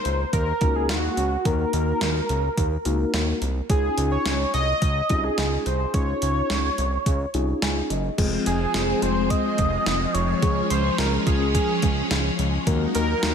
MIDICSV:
0, 0, Header, 1, 6, 480
1, 0, Start_track
1, 0, Tempo, 560748
1, 1245, Time_signature, 4, 2, 24, 8
1, 11423, End_track
2, 0, Start_track
2, 0, Title_t, "Analog synth lead"
2, 0, Program_c, 0, 81
2, 0, Note_on_c, 0, 72, 109
2, 250, Note_off_c, 0, 72, 0
2, 286, Note_on_c, 0, 70, 107
2, 647, Note_on_c, 0, 68, 94
2, 660, Note_off_c, 0, 70, 0
2, 763, Note_off_c, 0, 68, 0
2, 768, Note_on_c, 0, 66, 95
2, 1248, Note_on_c, 0, 70, 100
2, 1261, Note_off_c, 0, 66, 0
2, 2926, Note_off_c, 0, 70, 0
2, 3167, Note_on_c, 0, 68, 95
2, 3500, Note_off_c, 0, 68, 0
2, 3525, Note_on_c, 0, 73, 104
2, 3860, Note_off_c, 0, 73, 0
2, 3885, Note_on_c, 0, 75, 122
2, 4485, Note_on_c, 0, 68, 102
2, 4498, Note_off_c, 0, 75, 0
2, 4845, Note_on_c, 0, 72, 95
2, 4858, Note_off_c, 0, 68, 0
2, 5081, Note_off_c, 0, 72, 0
2, 5086, Note_on_c, 0, 73, 104
2, 6491, Note_off_c, 0, 73, 0
2, 7244, Note_on_c, 0, 68, 99
2, 7722, Note_on_c, 0, 72, 103
2, 7734, Note_off_c, 0, 68, 0
2, 7960, Note_on_c, 0, 75, 114
2, 7973, Note_off_c, 0, 72, 0
2, 8680, Note_on_c, 0, 73, 108
2, 8693, Note_off_c, 0, 75, 0
2, 9156, Note_off_c, 0, 73, 0
2, 9161, Note_on_c, 0, 72, 98
2, 9386, Note_off_c, 0, 72, 0
2, 9400, Note_on_c, 0, 70, 91
2, 9509, Note_off_c, 0, 70, 0
2, 9642, Note_on_c, 0, 68, 87
2, 9867, Note_off_c, 0, 68, 0
2, 9883, Note_on_c, 0, 68, 79
2, 10330, Note_off_c, 0, 68, 0
2, 11085, Note_on_c, 0, 70, 101
2, 11423, Note_off_c, 0, 70, 0
2, 11423, End_track
3, 0, Start_track
3, 0, Title_t, "Tine electric piano"
3, 0, Program_c, 1, 4
3, 521, Note_on_c, 1, 66, 67
3, 522, Note_on_c, 1, 58, 70
3, 522, Note_on_c, 1, 63, 66
3, 522, Note_on_c, 1, 70, 78
3, 993, Note_off_c, 1, 63, 0
3, 993, Note_off_c, 1, 66, 0
3, 994, Note_off_c, 1, 58, 0
3, 994, Note_off_c, 1, 70, 0
3, 1244, Note_on_c, 1, 58, 70
3, 1244, Note_on_c, 1, 63, 66
3, 1244, Note_on_c, 1, 66, 66
3, 1244, Note_on_c, 1, 70, 81
3, 1871, Note_off_c, 1, 63, 0
3, 1871, Note_off_c, 1, 66, 0
3, 1872, Note_off_c, 1, 58, 0
3, 1872, Note_off_c, 1, 70, 0
3, 2443, Note_on_c, 1, 70, 92
3, 2444, Note_on_c, 1, 58, 84
3, 2444, Note_on_c, 1, 63, 81
3, 2444, Note_on_c, 1, 66, 78
3, 2914, Note_off_c, 1, 58, 0
3, 2914, Note_off_c, 1, 63, 0
3, 2914, Note_off_c, 1, 70, 0
3, 2915, Note_off_c, 1, 66, 0
3, 3164, Note_on_c, 1, 61, 75
3, 3164, Note_on_c, 1, 63, 68
3, 3164, Note_on_c, 1, 65, 66
3, 3165, Note_on_c, 1, 68, 83
3, 3791, Note_off_c, 1, 65, 0
3, 3792, Note_off_c, 1, 61, 0
3, 3792, Note_off_c, 1, 63, 0
3, 3792, Note_off_c, 1, 68, 0
3, 4364, Note_on_c, 1, 61, 75
3, 4364, Note_on_c, 1, 63, 68
3, 4365, Note_on_c, 1, 65, 69
3, 4365, Note_on_c, 1, 68, 77
3, 4835, Note_off_c, 1, 61, 0
3, 4835, Note_off_c, 1, 63, 0
3, 4835, Note_off_c, 1, 65, 0
3, 4835, Note_off_c, 1, 68, 0
3, 5084, Note_on_c, 1, 61, 75
3, 5084, Note_on_c, 1, 63, 68
3, 5084, Note_on_c, 1, 65, 66
3, 5085, Note_on_c, 1, 68, 80
3, 5712, Note_off_c, 1, 61, 0
3, 5712, Note_off_c, 1, 63, 0
3, 5712, Note_off_c, 1, 65, 0
3, 5712, Note_off_c, 1, 68, 0
3, 6285, Note_on_c, 1, 61, 86
3, 6285, Note_on_c, 1, 63, 77
3, 6285, Note_on_c, 1, 65, 78
3, 6286, Note_on_c, 1, 68, 92
3, 6523, Note_on_c, 1, 80, 73
3, 6747, Note_off_c, 1, 80, 0
3, 6755, Note_off_c, 1, 61, 0
3, 6755, Note_off_c, 1, 63, 0
3, 6755, Note_off_c, 1, 65, 0
3, 6755, Note_off_c, 1, 68, 0
3, 6764, Note_on_c, 1, 75, 72
3, 6987, Note_off_c, 1, 75, 0
3, 7002, Note_on_c, 1, 56, 85
3, 7002, Note_on_c, 1, 60, 80
3, 7002, Note_on_c, 1, 68, 93
3, 7003, Note_on_c, 1, 65, 76
3, 7317, Note_off_c, 1, 56, 0
3, 7317, Note_off_c, 1, 60, 0
3, 7317, Note_off_c, 1, 65, 0
3, 7317, Note_off_c, 1, 68, 0
3, 7482, Note_on_c, 1, 56, 75
3, 7482, Note_on_c, 1, 60, 68
3, 7482, Note_on_c, 1, 68, 81
3, 7483, Note_on_c, 1, 65, 68
3, 8111, Note_off_c, 1, 56, 0
3, 8111, Note_off_c, 1, 60, 0
3, 8111, Note_off_c, 1, 65, 0
3, 8111, Note_off_c, 1, 68, 0
3, 8922, Note_on_c, 1, 65, 68
3, 8923, Note_on_c, 1, 56, 75
3, 8923, Note_on_c, 1, 61, 66
3, 8923, Note_on_c, 1, 68, 82
3, 9237, Note_off_c, 1, 56, 0
3, 9237, Note_off_c, 1, 61, 0
3, 9237, Note_off_c, 1, 65, 0
3, 9237, Note_off_c, 1, 68, 0
3, 9402, Note_on_c, 1, 68, 82
3, 9403, Note_on_c, 1, 56, 74
3, 9403, Note_on_c, 1, 61, 68
3, 9403, Note_on_c, 1, 65, 70
3, 10031, Note_off_c, 1, 56, 0
3, 10031, Note_off_c, 1, 61, 0
3, 10031, Note_off_c, 1, 65, 0
3, 10031, Note_off_c, 1, 68, 0
3, 10844, Note_on_c, 1, 58, 89
3, 10844, Note_on_c, 1, 63, 83
3, 10844, Note_on_c, 1, 66, 82
3, 10844, Note_on_c, 1, 70, 100
3, 11158, Note_off_c, 1, 58, 0
3, 11158, Note_off_c, 1, 63, 0
3, 11158, Note_off_c, 1, 66, 0
3, 11158, Note_off_c, 1, 70, 0
3, 11322, Note_on_c, 1, 58, 78
3, 11322, Note_on_c, 1, 63, 68
3, 11322, Note_on_c, 1, 70, 86
3, 11323, Note_on_c, 1, 66, 71
3, 11423, Note_off_c, 1, 58, 0
3, 11423, Note_off_c, 1, 63, 0
3, 11423, Note_off_c, 1, 66, 0
3, 11423, Note_off_c, 1, 70, 0
3, 11423, End_track
4, 0, Start_track
4, 0, Title_t, "String machine"
4, 0, Program_c, 2, 50
4, 7004, Note_on_c, 2, 53, 76
4, 7005, Note_on_c, 2, 56, 72
4, 7005, Note_on_c, 2, 60, 88
4, 8905, Note_off_c, 2, 60, 0
4, 8926, Note_on_c, 2, 61, 90
4, 10810, Note_off_c, 2, 53, 0
4, 10810, Note_off_c, 2, 56, 0
4, 10826, Note_off_c, 2, 61, 0
4, 10844, Note_on_c, 2, 54, 80
4, 10844, Note_on_c, 2, 63, 87
4, 10845, Note_on_c, 2, 58, 72
4, 11423, Note_off_c, 2, 54, 0
4, 11423, Note_off_c, 2, 58, 0
4, 11423, Note_off_c, 2, 63, 0
4, 11423, End_track
5, 0, Start_track
5, 0, Title_t, "Analog synth bass"
5, 0, Program_c, 3, 38
5, 44, Note_on_c, 3, 37, 93
5, 212, Note_off_c, 3, 37, 0
5, 283, Note_on_c, 3, 39, 94
5, 451, Note_off_c, 3, 39, 0
5, 526, Note_on_c, 3, 37, 89
5, 764, Note_on_c, 3, 39, 102
5, 777, Note_off_c, 3, 37, 0
5, 932, Note_off_c, 3, 39, 0
5, 1003, Note_on_c, 3, 37, 95
5, 1171, Note_off_c, 3, 37, 0
5, 1244, Note_on_c, 3, 39, 108
5, 1412, Note_off_c, 3, 39, 0
5, 1483, Note_on_c, 3, 39, 104
5, 1651, Note_off_c, 3, 39, 0
5, 1723, Note_on_c, 3, 39, 103
5, 1892, Note_off_c, 3, 39, 0
5, 1964, Note_on_c, 3, 37, 93
5, 2132, Note_off_c, 3, 37, 0
5, 2204, Note_on_c, 3, 39, 107
5, 2372, Note_off_c, 3, 39, 0
5, 2443, Note_on_c, 3, 37, 90
5, 2611, Note_off_c, 3, 37, 0
5, 2685, Note_on_c, 3, 39, 103
5, 2853, Note_off_c, 3, 39, 0
5, 2924, Note_on_c, 3, 36, 89
5, 3092, Note_off_c, 3, 36, 0
5, 3164, Note_on_c, 3, 37, 105
5, 3332, Note_off_c, 3, 37, 0
5, 3404, Note_on_c, 3, 37, 106
5, 3572, Note_off_c, 3, 37, 0
5, 3644, Note_on_c, 3, 37, 102
5, 3812, Note_off_c, 3, 37, 0
5, 3885, Note_on_c, 3, 36, 87
5, 4053, Note_off_c, 3, 36, 0
5, 4124, Note_on_c, 3, 37, 106
5, 4292, Note_off_c, 3, 37, 0
5, 4366, Note_on_c, 3, 36, 99
5, 4533, Note_off_c, 3, 36, 0
5, 4606, Note_on_c, 3, 37, 98
5, 4773, Note_off_c, 3, 37, 0
5, 4846, Note_on_c, 3, 36, 90
5, 5014, Note_off_c, 3, 36, 0
5, 5085, Note_on_c, 3, 37, 100
5, 5252, Note_off_c, 3, 37, 0
5, 5326, Note_on_c, 3, 37, 102
5, 5493, Note_off_c, 3, 37, 0
5, 5567, Note_on_c, 3, 37, 101
5, 5734, Note_off_c, 3, 37, 0
5, 5805, Note_on_c, 3, 36, 92
5, 5973, Note_off_c, 3, 36, 0
5, 6045, Note_on_c, 3, 37, 104
5, 6213, Note_off_c, 3, 37, 0
5, 6284, Note_on_c, 3, 36, 93
5, 6452, Note_off_c, 3, 36, 0
5, 6524, Note_on_c, 3, 37, 99
5, 6692, Note_off_c, 3, 37, 0
5, 6764, Note_on_c, 3, 30, 96
5, 6932, Note_off_c, 3, 30, 0
5, 7005, Note_on_c, 3, 29, 107
5, 7172, Note_off_c, 3, 29, 0
5, 7244, Note_on_c, 3, 29, 106
5, 7412, Note_off_c, 3, 29, 0
5, 7483, Note_on_c, 3, 29, 103
5, 7652, Note_off_c, 3, 29, 0
5, 7724, Note_on_c, 3, 29, 100
5, 7976, Note_off_c, 3, 29, 0
5, 8206, Note_on_c, 3, 29, 101
5, 8373, Note_off_c, 3, 29, 0
5, 8443, Note_on_c, 3, 29, 101
5, 8611, Note_off_c, 3, 29, 0
5, 8682, Note_on_c, 3, 29, 104
5, 8851, Note_off_c, 3, 29, 0
5, 8923, Note_on_c, 3, 37, 104
5, 9092, Note_off_c, 3, 37, 0
5, 9163, Note_on_c, 3, 37, 102
5, 9332, Note_off_c, 3, 37, 0
5, 9403, Note_on_c, 3, 37, 108
5, 9571, Note_off_c, 3, 37, 0
5, 9644, Note_on_c, 3, 37, 97
5, 9896, Note_off_c, 3, 37, 0
5, 10126, Note_on_c, 3, 37, 92
5, 10294, Note_off_c, 3, 37, 0
5, 10364, Note_on_c, 3, 37, 101
5, 10532, Note_off_c, 3, 37, 0
5, 10603, Note_on_c, 3, 37, 97
5, 10772, Note_off_c, 3, 37, 0
5, 10844, Note_on_c, 3, 39, 107
5, 11012, Note_off_c, 3, 39, 0
5, 11086, Note_on_c, 3, 39, 99
5, 11253, Note_off_c, 3, 39, 0
5, 11325, Note_on_c, 3, 39, 104
5, 11423, Note_off_c, 3, 39, 0
5, 11423, End_track
6, 0, Start_track
6, 0, Title_t, "Drums"
6, 43, Note_on_c, 9, 42, 72
6, 129, Note_off_c, 9, 42, 0
6, 283, Note_on_c, 9, 36, 89
6, 283, Note_on_c, 9, 42, 75
6, 368, Note_off_c, 9, 42, 0
6, 369, Note_off_c, 9, 36, 0
6, 521, Note_on_c, 9, 42, 70
6, 526, Note_on_c, 9, 36, 99
6, 607, Note_off_c, 9, 42, 0
6, 611, Note_off_c, 9, 36, 0
6, 763, Note_on_c, 9, 38, 114
6, 764, Note_on_c, 9, 42, 79
6, 849, Note_off_c, 9, 38, 0
6, 849, Note_off_c, 9, 42, 0
6, 1005, Note_on_c, 9, 42, 69
6, 1090, Note_off_c, 9, 42, 0
6, 1244, Note_on_c, 9, 36, 117
6, 1244, Note_on_c, 9, 42, 75
6, 1329, Note_off_c, 9, 36, 0
6, 1330, Note_off_c, 9, 42, 0
6, 1483, Note_on_c, 9, 42, 80
6, 1568, Note_off_c, 9, 42, 0
6, 1722, Note_on_c, 9, 38, 107
6, 1724, Note_on_c, 9, 42, 67
6, 1808, Note_off_c, 9, 38, 0
6, 1809, Note_off_c, 9, 42, 0
6, 1963, Note_on_c, 9, 42, 72
6, 2049, Note_off_c, 9, 42, 0
6, 2204, Note_on_c, 9, 36, 87
6, 2204, Note_on_c, 9, 42, 78
6, 2289, Note_off_c, 9, 36, 0
6, 2290, Note_off_c, 9, 42, 0
6, 2442, Note_on_c, 9, 42, 71
6, 2527, Note_off_c, 9, 42, 0
6, 2685, Note_on_c, 9, 38, 115
6, 2686, Note_on_c, 9, 42, 77
6, 2771, Note_off_c, 9, 38, 0
6, 2771, Note_off_c, 9, 42, 0
6, 2925, Note_on_c, 9, 42, 71
6, 3011, Note_off_c, 9, 42, 0
6, 3164, Note_on_c, 9, 36, 113
6, 3164, Note_on_c, 9, 42, 75
6, 3249, Note_off_c, 9, 36, 0
6, 3249, Note_off_c, 9, 42, 0
6, 3403, Note_on_c, 9, 42, 86
6, 3489, Note_off_c, 9, 42, 0
6, 3642, Note_on_c, 9, 38, 107
6, 3644, Note_on_c, 9, 42, 68
6, 3728, Note_off_c, 9, 38, 0
6, 3730, Note_off_c, 9, 42, 0
6, 3884, Note_on_c, 9, 42, 72
6, 3970, Note_off_c, 9, 42, 0
6, 4124, Note_on_c, 9, 36, 91
6, 4124, Note_on_c, 9, 42, 75
6, 4210, Note_off_c, 9, 36, 0
6, 4210, Note_off_c, 9, 42, 0
6, 4361, Note_on_c, 9, 42, 72
6, 4366, Note_on_c, 9, 36, 99
6, 4446, Note_off_c, 9, 42, 0
6, 4452, Note_off_c, 9, 36, 0
6, 4604, Note_on_c, 9, 38, 117
6, 4604, Note_on_c, 9, 42, 75
6, 4689, Note_off_c, 9, 38, 0
6, 4690, Note_off_c, 9, 42, 0
6, 4845, Note_on_c, 9, 42, 71
6, 4931, Note_off_c, 9, 42, 0
6, 5084, Note_on_c, 9, 36, 118
6, 5084, Note_on_c, 9, 42, 76
6, 5169, Note_off_c, 9, 42, 0
6, 5170, Note_off_c, 9, 36, 0
6, 5324, Note_on_c, 9, 42, 85
6, 5409, Note_off_c, 9, 42, 0
6, 5563, Note_on_c, 9, 38, 110
6, 5565, Note_on_c, 9, 42, 69
6, 5649, Note_off_c, 9, 38, 0
6, 5650, Note_off_c, 9, 42, 0
6, 5805, Note_on_c, 9, 42, 73
6, 5891, Note_off_c, 9, 42, 0
6, 6045, Note_on_c, 9, 36, 87
6, 6045, Note_on_c, 9, 42, 76
6, 6130, Note_off_c, 9, 36, 0
6, 6131, Note_off_c, 9, 42, 0
6, 6283, Note_on_c, 9, 42, 70
6, 6368, Note_off_c, 9, 42, 0
6, 6525, Note_on_c, 9, 38, 117
6, 6526, Note_on_c, 9, 42, 76
6, 6611, Note_off_c, 9, 38, 0
6, 6611, Note_off_c, 9, 42, 0
6, 6765, Note_on_c, 9, 42, 70
6, 6851, Note_off_c, 9, 42, 0
6, 7004, Note_on_c, 9, 36, 116
6, 7005, Note_on_c, 9, 42, 74
6, 7005, Note_on_c, 9, 49, 90
6, 7090, Note_off_c, 9, 36, 0
6, 7090, Note_off_c, 9, 42, 0
6, 7090, Note_off_c, 9, 49, 0
6, 7244, Note_on_c, 9, 42, 84
6, 7329, Note_off_c, 9, 42, 0
6, 7483, Note_on_c, 9, 38, 109
6, 7485, Note_on_c, 9, 42, 69
6, 7569, Note_off_c, 9, 38, 0
6, 7571, Note_off_c, 9, 42, 0
6, 7724, Note_on_c, 9, 42, 73
6, 7810, Note_off_c, 9, 42, 0
6, 7964, Note_on_c, 9, 36, 88
6, 7964, Note_on_c, 9, 42, 78
6, 8049, Note_off_c, 9, 36, 0
6, 8050, Note_off_c, 9, 42, 0
6, 8201, Note_on_c, 9, 42, 71
6, 8206, Note_on_c, 9, 36, 105
6, 8287, Note_off_c, 9, 42, 0
6, 8291, Note_off_c, 9, 36, 0
6, 8444, Note_on_c, 9, 38, 117
6, 8444, Note_on_c, 9, 42, 75
6, 8530, Note_off_c, 9, 38, 0
6, 8530, Note_off_c, 9, 42, 0
6, 8685, Note_on_c, 9, 42, 70
6, 8771, Note_off_c, 9, 42, 0
6, 8923, Note_on_c, 9, 42, 77
6, 8924, Note_on_c, 9, 36, 115
6, 9009, Note_off_c, 9, 36, 0
6, 9009, Note_off_c, 9, 42, 0
6, 9163, Note_on_c, 9, 42, 85
6, 9249, Note_off_c, 9, 42, 0
6, 9402, Note_on_c, 9, 38, 111
6, 9404, Note_on_c, 9, 42, 68
6, 9488, Note_off_c, 9, 38, 0
6, 9490, Note_off_c, 9, 42, 0
6, 9644, Note_on_c, 9, 36, 89
6, 9644, Note_on_c, 9, 42, 77
6, 9730, Note_off_c, 9, 36, 0
6, 9730, Note_off_c, 9, 42, 0
6, 9884, Note_on_c, 9, 36, 89
6, 9884, Note_on_c, 9, 42, 77
6, 9970, Note_off_c, 9, 36, 0
6, 9970, Note_off_c, 9, 42, 0
6, 10121, Note_on_c, 9, 42, 72
6, 10126, Note_on_c, 9, 36, 104
6, 10207, Note_off_c, 9, 42, 0
6, 10211, Note_off_c, 9, 36, 0
6, 10365, Note_on_c, 9, 38, 116
6, 10365, Note_on_c, 9, 42, 77
6, 10450, Note_off_c, 9, 38, 0
6, 10451, Note_off_c, 9, 42, 0
6, 10605, Note_on_c, 9, 42, 72
6, 10691, Note_off_c, 9, 42, 0
6, 10844, Note_on_c, 9, 36, 115
6, 10844, Note_on_c, 9, 42, 77
6, 10930, Note_off_c, 9, 36, 0
6, 10930, Note_off_c, 9, 42, 0
6, 11083, Note_on_c, 9, 42, 82
6, 11168, Note_off_c, 9, 42, 0
6, 11323, Note_on_c, 9, 38, 113
6, 11325, Note_on_c, 9, 42, 70
6, 11409, Note_off_c, 9, 38, 0
6, 11410, Note_off_c, 9, 42, 0
6, 11423, End_track
0, 0, End_of_file